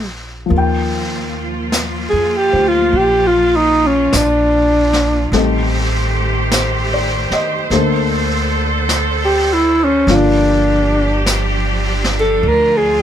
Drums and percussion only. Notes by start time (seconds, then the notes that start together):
0.50 brush sweep
1.72 brush sweep, snare, hi-hat pedal
2.93 brush sweep
4.13 brush sweep, snare, hi-hat pedal
4.93 snare
5.33 brush sweep, snare
6.51 brush sweep, snare, hi-hat pedal
7.31 snare
7.71 brush sweep, snare
8.89 brush sweep, snare, hi-hat pedal
10.08 brush sweep, snare
11.26 brush sweep, snare, hi-hat pedal
12.04 snare
12.44 brush sweep